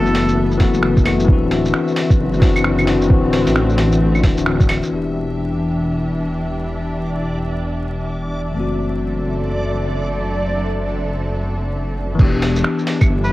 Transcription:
Already playing: detuned saw bass F#1, string section B2 B3 A4 E5, tine electric piano E3 A3 B3 F#4, muted trumpet A4
0.06 shaker
0.15 open hi-hat
0.28 shaker
0.51 shaker
0.58 tine electric piano E3 A3 B3 F#4, kick, open hi-hat
0.74 shaker
0.83 finger snap
0.97 kick, shaker
1.03 tine electric piano E3 A3 B3, open hi-hat, claves
1.07 tine electric piano F#4
1.20 shaker
1.24 detuned saw bass D1, tine electric piano E3 C4, kick
1.29 string section D3, tine electric piano D4 F#4
1.43 string section F#4
1.51 string section C4, open hi-hat
1.65 shaker
1.74 finger snap
1.88 shaker
1.96 open hi-hat
2.11 kick, shaker
2.19 detuned saw bass F#1
2.33 shaker
2.40 tine electric piano E3 C4 D4 F#4, kick, open hi-hat
2.56 claves, shaker
2.64 finger snap, claves
2.79 claves, shaker
2.85 tine electric piano E3 C4 D4 F#4, open hi-hat
3.01 shaker
3.06 tine electric piano E3 C4
3.10 detuned saw bass D1, tine electric piano D4 F#4, kick
3.33 open hi-hat
3.47 detuned saw bass A1, open hi-hat, shaker
3.56 finger snap
3.69 shaker
3.78 open hi-hat
3.92 shaker
4.15 claves, shaker
4.23 detuned saw bass D1, kick, open hi-hat
4.33 tine electric piano E3 C4
4.38 tine electric piano D4 F#4, shaker
4.46 finger snap
4.60 kick, shaker
4.69 open hi-hat, claves
4.83 shaker
4.87 detuned saw bass E1, tine electric piano E3 B3
4.92 string section E3, synth texture D4 D5, tine electric piano D4 G4
5.08 string section G4
5.14 string section D4
8.52 tine electric piano E3 A3
8.56 detuned saw bass F#1, string section F#3, tine electric piano C4
8.60 tine electric piano F#4
8.76 string section C4
9.03 string section A4
12.15 tine electric piano E3 B3
12.19 detuned saw bass E1, string section E3, tine electric piano D4 G4, kick, crash
12.31 string section G4
12.38 string section D4
12.42 open hi-hat
12.56 shaker
12.64 finger snap
12.79 shaker
12.87 open hi-hat
13.01 string section E5, kick, claves, shaker
13.10 detuned saw bass G1
13.24 muted trumpet B4, shaker

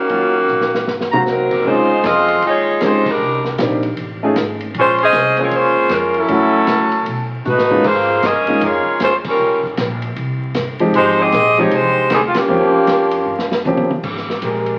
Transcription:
Already playing: saxophone section D#3 A#3 C#4 F#4
0.09 upright bass D#2, grand piano F#3 A#3 C#4 F4, kick, ride
0.48 upright bass A#1, hi-hat pedal
0.61 snare
0.74 snare
0.87 upright bass G#1, snare
1.01 snare
1.12 grand piano F#3 A#3 C4 F#4, trumpet section F#4 C5 F5 A#5, mid tom
1.26 upright bass C2, saxophone section F#3 C4 D#4 A#4, snare, hi-hat pedal
1.51 kick, crash
1.65 upright bass C#2, saxophone section G#3 D#4 F4 C5, grand piano G#3 C4 C#4 D#4 F4, kick
2.04 upright bass F2, saxophone section C4 F4 G#4 D#5, kick, snare, hi-hat pedal, ride
2.28 ride
2.42 upright bass D#2, saxophone section G#3 D#4 F4 C#5, kick, ride
2.81 upright bass C#2, grand piano G#3 C4 C#4 D#4 G4, saxophone section G#3 D#4 F4 C5, kick, snare, hi-hat pedal, ride
3.06 saxophone section G3 D4 D#4 A#4, kick, crash
3.20 upright bass C2
3.45 snare
3.58 upright bass A#1, grand piano A#3 C4 D4 D#4 G4, kick, snare, hi-hat pedal, ride
3.83 ride
3.97 upright bass A1, kick, ride
4.23 grand piano A3 C#4 D#4 F4 G#4
4.36 upright bass G#1, kick, snare, hi-hat pedal, ride
4.61 ride
4.74 upright bass A#1, saxophone section G#3 C#4 F4 C5, kick, ride
4.98 saxophone section G#4 C5 D#5, ride
5.02 saxophone section C#4
5.12 upright bass C2, kick, snare, hi-hat pedal, ride
5.37 saxophone section G#3 C4 F4 C#5, grand piano A#3 C#4 F4 G#4 C5, ride
5.51 upright bass C#2, saxophone section G#3 C#4 F4 C5, kick, ride
5.89 upright bass F2, saxophone section G#3 C#4 A#4, kick, snare, hi-hat pedal, ride
5.93 saxophone section F4
6.14 saxophone section F#3 C#4 E4 A4, ride
6.28 upright bass F#2, grand piano A3 C#4 E4 F#4 A4, kick, ride
6.67 upright bass C#3, kick, snare, hi-hat pedal, ride
6.92 ride
7.06 upright bass B2, kick, ride
7.45 upright bass A2, saxophone section A3 D#4 F#4 B4, hi-hat pedal, mid tom
7.58 snare
7.70 grand piano G#3 A#3 C#4 D#4 F4, floor tom
7.84 upright bass G#2, saxophone section A#3 F4 G#4 C5, kick, crash
8.23 upright bass G2, saxophone section C#4 G#4 A#4 D#5, kick, snare, hi-hat pedal, ride
8.47 grand piano G#3 A#3 C#4 D#4 F4, ride
8.61 upright bass F2, saxophone section A#3 F4 G#4 C#5, kick, ride
8.86 muted upright bass stroke
9.00 upright bass D#2, saxophone section G#3 C#4 F4 C5, kick, snare, hi-hat pedal, ride
9.24 saxophone section G3 C#4 F4 A#4, kick, crash
9.39 upright bass C#2
9.63 kick
9.77 upright bass A#1, kick, snare, hi-hat pedal, ride
10.02 ride
10.16 upright bass C2, kick, ride
10.54 upright bass G1, kick, snare, hi-hat pedal, ride
10.79 grand piano F3 G#3 C4 D#4 G4, ride
10.94 upright bass G#1, saxophone section G#3 D#4 G4 C5, kick, ride
11.20 saxophone section C4 G4 G#4 D#5
11.32 upright bass A#1, kick, snare, hi-hat pedal, ride
11.57 grand piano F3 G#3 C4 D#4 G4, saxophone section A#3 D#4 G4 C#5, ride
11.71 upright bass C2, saxophone section G#3 D#4 G4 C5, kick, ride
12.10 upright bass D2, saxophone section D#3 G3 C4 G#4, snare, hi-hat pedal, ride
12.27 saxophone section F4
12.34 saxophone section F3 A#3 C#4 G4, muted upright bass stroke, snare, ride
12.48 upright bass D#2, grand piano F3 A#3 C4 C#4 G4
12.73 muted upright bass stroke
12.87 upright bass F2, kick, snare, hi-hat pedal, ride
13.11 ride
13.26 upright bass G2
13.39 snare
13.51 snare
13.65 upright bass D#2, grand piano F3 A#3 C4 C#4 G4, hi-hat pedal, high tom
13.77 high tom
13.90 muted upright bass stroke, high tom
14.03 upright bass G#1, kick, crash
14.17 snare
14.30 snare
14.42 upright bass A#1, trombone section G#3 C4 G4 A#4, kick, hi-hat pedal, ride
14.66 ride

